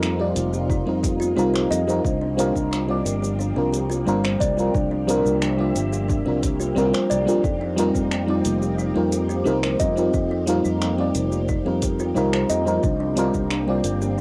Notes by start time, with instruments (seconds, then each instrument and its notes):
Already playing: fretless electric bass F2, string machine F3 A#3 C4 D#4 F4, fm electric piano G3 C4 D#4 F4 A#4
0.02 kalimba D#4, finger snap, shaker
0.18 fm electric piano G3 C4 D#4 F4 D5, kalimba G4
0.36 fretless electric bass F1, kalimba A#4, closed hi-hat, shaker
0.54 kalimba G4, shaker
0.70 kalimba D#4, kick, shaker
0.86 fretless electric bass F2, fm electric piano G3 C4 D#4 F4 A#4, kalimba A#4
1.03 kalimba G4, kick, closed hi-hat, shaker
1.20 kalimba F4, shaker
1.36 fretless electric bass C2, fm electric piano G3 C4 D#4 F4 A#4, kalimba D#4, shaker
1.54 kalimba C5, finger snap
1.71 fretless electric bass F2, kalimba D#5, closed hi-hat, shaker
1.87 fm electric piano G3 C4 D#4 F4 A#4, kalimba F4, shaker
2.04 fretless electric bass C2, string machine C4 D4 G4, kalimba D4, kick, shaker
2.21 kalimba D4
2.37 fm electric piano G3 C4 D4 F4 A#4, kalimba G4, closed hi-hat, shaker
2.55 fretless electric bass C2, kalimba D4, kick, shaker
2.71 kalimba D4, finger snap, shaker
2.87 fm electric piano G3 C4 D4 F4 D5, kalimba G4
3.05 fretless electric bass G1, kalimba A#4, closed hi-hat, shaker
3.22 kalimba G4, shaker
3.39 kalimba D4, shaker
3.55 fretless electric bass C2, fm electric piano G3 C4 D4 F4 A#4, kalimba A#4
3.73 kalimba G4, closed hi-hat, shaker
3.90 kalimba F4, shaker
4.06 fretless electric bass G1, fm electric piano G3 C4 D4 F4 A#4, kalimba D4, shaker
4.24 kalimba C5, finger snap
4.40 fretless electric bass C2, kalimba D5, kick, closed hi-hat, shaker
4.57 fm electric piano G3 C4 D4 F4 A#4, kalimba F4, shaker
4.74 fretless electric bass C2, kalimba D4, string machine E5, kick, shaker
4.91 kalimba D4
5.07 fm electric piano G3 C4 D4 F4 A#4, kalimba G4, closed hi-hat, shaker
5.25 fretless electric bass C2, kalimba D4, shaker
5.41 kalimba D4, finger snap, shaker
5.57 fm electric piano G3 C4 D4 F4 D5, kalimba G4
5.75 fretless electric bass G1, kalimba A#4, closed hi-hat, shaker
5.92 kalimba G4, shaker
6.08 kalimba D4, kick, shaker
6.25 fretless electric bass C2, fm electric piano G3 C4 D4 F4 A#4, kalimba A#4
6.43 kalimba G4, kick, closed hi-hat, shaker
6.60 kalimba F4, shaker
6.75 fretless electric bass C2, fm electric piano G3 C4 D4 F4 A#4, kalimba D4, shaker
6.94 kalimba C5, finger snap
7.10 fretless electric bass C2, kalimba D5, closed hi-hat, shaker
7.26 fm electric piano G3 C4 D4 F4 A#4, kalimba F4, shaker
7.44 fretless electric bass F2, string machine F3 D#4, kalimba D#4, kick, shaker
7.61 kalimba D#4
7.76 fm electric piano G3 C4 D#4 F4 A#4, kalimba G4, closed hi-hat, shaker
7.95 fretless electric bass F2, kalimba D#4, kick, shaker
8.11 kalimba D#4, finger snap, shaker
8.27 fm electric piano G3 C4 D#4 F4 D5, kalimba G4
8.45 fretless electric bass F1, kalimba A#4, closed hi-hat, shaker
8.62 kalimba G4, shaker
8.78 kalimba D#4, shaker
8.94 fretless electric bass F2, fm electric piano G3 C4 D#4 F4 A#4, kalimba A#4
9.12 kalimba G4, closed hi-hat, shaker
9.29 kalimba F4, shaker
9.44 fretless electric bass C2, fm electric piano G3 C4 D#4 F4 A#4, kalimba D#4, shaker
9.63 kalimba C5, finger snap
9.80 fretless electric bass F2, kalimba D#5, kick, closed hi-hat, shaker
9.96 fm electric piano G3 C4 D#4 F4 A#4, kalimba F4, shaker
10.14 fretless electric bass F2, kalimba D#4, kick, shaker
10.31 kalimba D#4
10.46 fm electric piano G3 C4 D#4 F4 A#4, kalimba G4, closed hi-hat, shaker
10.65 fretless electric bass F2, kalimba D#4, shaker
10.81 kalimba D#4, finger snap, shaker
10.97 fm electric piano G3 C4 D#4 F4 D5, kalimba G4
11.15 fretless electric bass F1, kalimba A#4, closed hi-hat, shaker
11.32 kalimba G4, shaker
11.49 kalimba D#4, kick, shaker
11.65 fretless electric bass F2, fm electric piano G3 C4 D#4 F4 A#4, kalimba A#4
11.82 kalimba G4, kick, closed hi-hat, shaker
11.99 kalimba F4, shaker
12.14 fretless electric bass C2, fm electric piano G3 C4 D#4 F4 A#4, kalimba D#4, shaker
12.33 kalimba C5, finger snap
12.50 fretless electric bass F2, kalimba D#5, closed hi-hat, shaker
12.65 fm electric piano G3 C4 D#4 F4 A#4, kalimba F4, shaker
12.83 fretless electric bass C2, string machine A#3 C4, kalimba D4, kick, shaker
13.00 kalimba D4
13.15 fm electric piano G3 C4 D4 F4 A#4, kalimba G4, closed hi-hat, shaker
13.34 fretless electric bass C2, kalimba D4, kick, shaker
13.51 kalimba D4, finger snap, shaker
13.67 fm electric piano G3 C4 D4 F4 D5, kalimba G4
13.84 fretless electric bass G1, kalimba A#4, closed hi-hat, shaker
14.02 kalimba G4, shaker